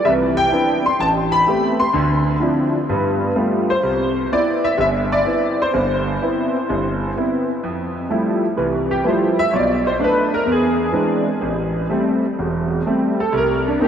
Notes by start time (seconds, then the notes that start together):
0.05 C2 E3 E5
0.37 G5
0.52 B3 C4 D4 E4
0.86 C6
0.99 A1 A5
1.32 B5
1.47 A3 B3 C4 G4
1.80 C6
1.93 D2 D3
2.40 F3 C4 D4 E4
2.89 G2 B3
3.36 G3 A3 B3 F4
3.70 C5
3.83 C2
4.32 B3 C4 E4 D5
4.64 E5
4.78 G1 E5
5.12 D5
5.25 B3 C4 E4
5.62 C5
5.74 G1
6.22 B3 C4 E4
6.69 G1
7.17 B3 C4 E4
7.63 F2
8.10 F3 G3 A3 E4
8.57 C2 E3
8.91 G4
9.04 F3 G3 A3 E4 B4
9.09 C5
9.39 E5
9.51 B1 C#5
9.56 D5
9.87 C5
9.99 A3 B3 D4
10.04 B4
10.34 A#4
10.46 E2
10.52 G#4
10.92 E3 G#3 C4 D4
11.41 A1
11.89 G3 A3 C4
12.39 E1
12.86 G3 A3 C4
13.20 A4
13.32 C2
13.37 A#4
13.68 D4
13.80 A#3 C4 D4 D#4 G4